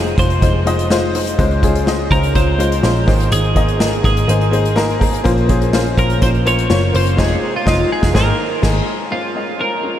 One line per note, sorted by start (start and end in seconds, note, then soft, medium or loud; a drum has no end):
0.00 0.15 F1 loud
0.00 0.14 C3 medium
0.00 0.18 G#3 medium
0.00 0.18 D#4 medium
0.00 0.19 F4 medium
0.00 0.19 G#4 medium
0.00 0.19 C5 loud
0.06 closed hi-hat soft
0.18 0.41 F1 medium
0.18 0.40 G#3 medium
0.18 0.41 D#4 medium
0.18 0.41 F4 medium
0.18 0.41 C5 medium
0.18 0.87 C5 medium
0.18 kick loud
0.18 closed hi-hat medium
0.30 closed hi-hat soft
0.41 1.35 F1 medium
0.41 0.64 G#3 medium
0.41 0.64 D#4 medium
0.41 0.65 F4 medium
0.41 0.65 C5 medium
0.41 kick loud
0.41 closed hi-hat medium
0.66 0.88 G#3 medium
0.66 0.89 D#4 medium
0.66 0.89 F4 medium
0.66 0.89 D#5 loud
0.66 closed hi-hat medium
0.79 closed hi-hat soft
0.90 1.13 G#3 loud
0.90 1.13 D#4 medium
0.90 1.13 F4 loud
0.90 1.14 C5 loud
0.90 snare medium
1.14 1.37 G#3 medium
1.14 1.37 D#4 medium
1.14 1.38 F4 medium
1.14 1.38 C5 medium
1.14 open hi-hat medium
1.27 closed hi-hat soft
1.38 2.08 C#2 medium
1.38 2.07 G#2 medium
1.38 1.61 G#3 loud
1.38 1.61 C#4 medium
1.38 1.62 F4 medium
1.38 1.62 C5 loud
1.38 kick loud
1.38 closed hi-hat medium
1.51 closed hi-hat soft
1.62 1.85 G#3 medium
1.62 1.85 C#4 medium
1.62 1.86 F4 medium
1.62 1.86 G#4 medium
1.62 kick medium
1.62 closed hi-hat medium
1.75 closed hi-hat soft
1.86 2.09 G#3 medium
1.86 2.09 C#4 medium
1.86 2.10 F4 medium
1.86 2.10 D#5 medium
1.86 snare loud
2.11 2.34 C#2 medium
2.11 2.33 G#3 medium
2.11 2.34 C#4 medium
2.11 2.34 F4 medium
2.11 2.35 A#4 loud
2.11 2.34 C5 medium
2.11 kick medium
2.11 closed hi-hat medium
2.23 closed hi-hat medium
2.35 2.80 C#2 loud
2.35 2.57 G#3 medium
2.35 2.58 C#4 medium
2.35 2.58 F4 medium
2.35 3.28 C5 loud
2.35 2.58 C5 medium
2.35 kick loud
2.35 closed hi-hat medium
2.58 2.81 G#3 medium
2.58 2.82 C#4 medium
2.58 2.82 F4 medium
2.58 2.82 C5 loud
2.58 closed hi-hat medium
2.72 closed hi-hat medium
2.83 3.06 A#1 medium
2.83 3.06 G#3 medium
2.83 3.06 C#4 medium
2.83 3.06 F4 medium
2.83 3.07 C5 loud
2.83 snare medium
2.96 closed hi-hat soft
3.07 3.30 G#1 medium
3.07 3.76 G#2 medium
3.07 3.76 D#3 medium
3.07 3.52 A#3 medium
3.07 3.52 D#4 medium
3.07 3.53 G#4 medium
3.07 3.53 C5 medium
3.07 kick loud
3.07 snare soft
3.07 open hi-hat medium
3.20 closed hi-hat soft
3.32 4.01 G#1 loud
3.32 4.04 G#4 medium
3.32 closed hi-hat medium
3.44 closed hi-hat soft
3.55 3.77 A#3 medium
3.55 3.78 D#4 medium
3.55 3.79 G#4 medium
3.55 3.79 D#5 medium
3.55 kick medium
3.55 closed hi-hat medium
3.68 closed hi-hat soft
3.79 4.02 A#3 medium
3.79 4.02 D#4 medium
3.79 4.03 G#4 medium
3.79 4.03 A#4 medium
3.79 snare loud
3.93 closed hi-hat soft
4.03 4.27 G#1 medium
4.03 4.26 A#3 medium
4.03 4.27 D#4 medium
4.03 4.27 G#4 medium
4.03 4.73 G#4 medium
4.03 4.27 A#4 medium
4.03 kick medium
4.03 closed hi-hat medium
4.17 closed hi-hat medium
4.28 5.21 G#1 medium
4.28 4.50 A#3 medium
4.28 4.51 D#4 medium
4.28 4.51 G#4 medium
4.28 4.51 C5 medium
4.28 closed hi-hat medium
4.41 closed hi-hat soft
4.51 4.74 A#3 medium
4.51 4.75 D#4 medium
4.51 4.75 G#4 medium
4.51 4.75 C5 loud
4.51 closed hi-hat medium
4.65 closed hi-hat soft
4.76 4.98 A#3 loud
4.76 4.99 D#4 medium
4.76 4.99 G#4 loud
4.76 5.00 A#4 loud
4.76 snare medium
4.90 closed hi-hat soft
5.00 5.23 A#3 medium
5.00 5.23 D#4 medium
5.00 5.23 G#4 medium
5.00 5.24 A#4 medium
5.00 kick medium
5.00 open hi-hat medium
5.14 closed hi-hat medium
5.24 5.94 A#1 loud
5.24 5.94 A#2 medium
5.24 5.94 F3 medium
5.24 5.47 A#3 loud
5.24 5.47 C#4 medium
5.24 5.48 F4 loud
5.24 5.48 C5 loud
5.24 kick loud
5.24 closed hi-hat medium
5.37 closed hi-hat soft
5.48 5.71 A#3 medium
5.48 5.71 C#4 medium
5.48 5.72 F4 medium
5.48 5.72 G#4 medium
5.48 kick medium
5.48 closed hi-hat medium
5.62 closed hi-hat soft
5.73 5.96 A#3 medium
5.73 5.96 C#4 medium
5.73 5.96 F4 medium
5.73 5.96 C5 loud
5.73 snare loud
5.86 closed hi-hat soft
5.97 6.20 A#1 medium
5.97 6.19 A#3 medium
5.97 6.20 C#4 medium
5.97 6.20 F4 medium
5.97 6.22 A#4 medium
5.97 6.20 C5 medium
5.97 kick medium
5.97 closed hi-hat medium
6.10 closed hi-hat medium
6.21 6.67 A#1 loud
6.21 6.44 A#3 medium
6.21 6.44 C#4 medium
6.21 6.44 F4 medium
6.21 6.29 C5 loud
6.21 6.45 C5 medium
6.21 kick loud
6.21 closed hi-hat medium
6.34 closed hi-hat soft
6.45 6.68 A#3 medium
6.45 6.68 C#4 medium
6.45 6.69 F4 medium
6.45 6.69 C5 loud
6.45 6.95 C#5 loud
6.45 closed hi-hat medium
6.59 closed hi-hat medium
6.69 6.93 F#1 medium
6.69 6.91 A#3 medium
6.69 6.92 C#4 medium
6.69 6.93 F4 medium
6.69 6.93 C#5 loud
6.69 snare medium
6.93 7.17 F#1 medium
6.93 7.16 A#3 medium
6.93 7.16 C#4 medium
6.93 7.17 F4 medium
6.93 7.17 C5 medium
6.93 7.20 C5 loud
6.93 open hi-hat medium
7.07 closed hi-hat soft
7.17 7.35 F1 medium
7.17 7.35 C3 medium
7.17 7.34 G#3 loud
7.17 7.34 D#4 medium
7.17 7.35 F4 medium
7.17 7.56 G#4 medium
7.17 7.35 C5 medium
7.17 kick loud
7.17 snare loud
7.17 crash medium
7.56 7.67 F4 medium
7.66 7.83 F1 medium
7.66 7.82 G#3 loud
7.66 7.83 D#4 loud
7.66 7.83 F4 medium
7.66 7.90 F4 medium
7.66 7.84 D#5 loud
7.66 kick loud
7.66 snare loud
7.92 8.16 G#4 medium
8.02 8.13 F1 medium
8.02 8.13 G#3 medium
8.02 8.13 D#4 medium
8.02 8.13 F4 medium
8.02 kick loud
8.02 snare loud
8.14 8.31 G#1 medium
8.14 8.31 G#2 medium
8.14 8.31 D#3 medium
8.14 8.31 A#3 medium
8.14 8.31 D#4 medium
8.14 8.31 G#4 medium
8.14 8.60 A#4 medium
8.14 8.32 C5 loud
8.14 kick loud
8.14 snare loud
8.62 8.80 G#1 medium
8.62 8.79 A#3 medium
8.62 8.79 D#4 medium
8.62 8.80 G#4 medium
8.62 8.80 A#4 medium
8.62 kick loud
8.62 snare loud
8.62 crash medium
9.11 9.80 G#2 soft
9.11 9.33 G#3 medium
9.11 9.34 C#4 medium
9.11 9.34 F4 medium
9.11 9.62 F4 medium
9.11 9.34 C5 medium
9.35 9.58 G#3 medium
9.35 9.58 C#4 soft
9.35 9.58 F4 soft
9.35 9.59 D#5 medium
9.59 9.82 G#3 medium
9.59 9.82 C#4 soft
9.59 9.83 F4 soft
9.59 9.99 A#4 medium
9.59 9.83 C5 medium
9.83 9.99 G#3 medium
9.83 9.99 C#4 medium
9.83 9.99 F4 medium
9.83 9.99 C#5 medium